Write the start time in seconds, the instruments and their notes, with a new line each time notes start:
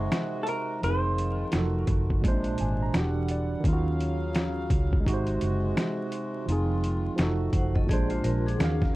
Already playing: accordion C3 G#3 F#4, tine electric piano G#3 D#4 F#4 C5, hollow-body jazz guitar G#4
0.12 finger snap, snare, closed hi-hat
0.43 hollow-body jazz guitar A4, closed hi-hat
0.49 hollow-body jazz guitar A#4
0.81 fingered electric bass F1, accordion D#3 F4, tine electric piano F3 C4, hollow-body jazz guitar C5, closed hi-hat
0.85 tine electric piano D#4 G#4
1.18 closed hi-hat
1.51 fingered electric bass F1, tine electric piano F3 D#4, accordion A3 F#4, finger snap, snare, closed hi-hat
1.56 tine electric piano F#4 A4
1.87 fingered electric bass F#1, kick, closed hi-hat
2.10 kick
2.22 fingered electric bass A#1, tine electric piano A#2 G#3, accordion C3 G#3 D4, kick, closed hi-hat
2.26 tine electric piano C4 C5
2.32 tine electric piano D4
2.44 closed hi-hat
2.58 fingered electric bass G#1, tine electric piano G#5, closed hi-hat
2.82 tine electric piano A#5
2.93 fingered electric bass E1, accordion D3 G3 F#5, tine electric piano E3 D4 F#5, finger snap, snare, closed hi-hat
2.97 tine electric piano F#4 G4
3.29 tine electric piano D5, closed hi-hat
3.60 tine electric piano D#3
3.64 fingered electric bass D#2, accordion C#3 F#3 F5, tine electric piano C#4, kick, closed hi-hat
3.69 tine electric piano F4
3.73 tine electric piano F#4
4.00 closed hi-hat
4.34 finger snap, snare, closed hi-hat
4.70 fingered electric bass C#2, kick, closed hi-hat
4.93 kick
5.00 tine electric piano G#3
5.05 fingered electric bass G#1, accordion C3 G#3 F#4, tine electric piano D#4, kick, closed hi-hat
5.09 tine electric piano F#4
5.14 tine electric piano C5
5.27 closed hi-hat
5.41 fingered electric bass F#1, closed hi-hat
5.77 finger snap, snare, closed hi-hat
6.12 closed hi-hat
6.46 fingered electric bass F1, accordion D#3 F4, tine electric piano F3 C4, closed hi-hat
6.50 tine electric piano D#4 G#4
6.84 closed hi-hat
7.16 fingered electric bass F1, tine electric piano F3 D#4, accordion A3 F#4, finger snap, snare, closed hi-hat
7.21 tine electric piano F#4 A4
7.53 fingered electric bass F#1, vibraphone C5 F#5, kick, closed hi-hat
7.75 vibraphone A4 D#5, kick
7.86 fingered electric bass A#1, tine electric piano A#2 G#3, accordion C3 G#3 D4, vibraphone G#4 D5, kick
7.91 tine electric piano D4 C5, closed hi-hat
8.10 vibraphone F4 C5, closed hi-hat
8.24 fingered electric bass A#1, vibraphone F4 A#4, closed hi-hat
8.46 vibraphone D4 G#4, closed hi-hat
8.57 fingered electric bass D#2, accordion C#3 F#3 F5, tine electric piano D#3 C#4, finger snap, snare, closed hi-hat
8.62 tine electric piano F4 F5
8.68 tine electric piano F#4
8.82 kick, snare